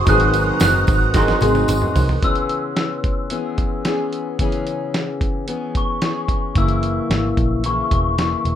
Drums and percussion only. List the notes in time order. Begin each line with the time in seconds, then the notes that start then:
0.06 kick, closed hi-hat, tambourine
0.20 closed hi-hat
0.34 closed hi-hat, tambourine
0.60 snare, closed hi-hat, tambourine
0.87 kick, closed hi-hat, tambourine
1.14 kick, snare, closed hi-hat, tambourine
1.28 snare, tambourine
1.41 closed hi-hat, high tom, tambourine
1.55 high tom, tambourine
1.68 closed hi-hat, mid tom, tambourine
1.82 mid tom
1.96 floor tom, open hi-hat, tambourine
2.09 floor tom
2.22 kick, closed hi-hat
2.35 closed hi-hat
2.49 closed hi-hat
2.76 snare, closed hi-hat
3.04 kick, closed hi-hat
3.30 closed hi-hat
3.58 kick, closed hi-hat
3.85 snare, closed hi-hat
4.13 closed hi-hat
4.39 kick, closed hi-hat
4.52 closed hi-hat
4.67 closed hi-hat
4.94 snare, closed hi-hat
5.21 kick, closed hi-hat
5.48 closed hi-hat
5.75 kick, closed hi-hat
6.02 snare, closed hi-hat
6.28 kick, closed hi-hat
6.55 kick, closed hi-hat
6.68 closed hi-hat
6.83 closed hi-hat
7.11 snare, closed hi-hat
7.37 kick, closed hi-hat
7.64 closed hi-hat
7.91 kick, closed hi-hat
8.18 snare, closed hi-hat
8.45 closed hi-hat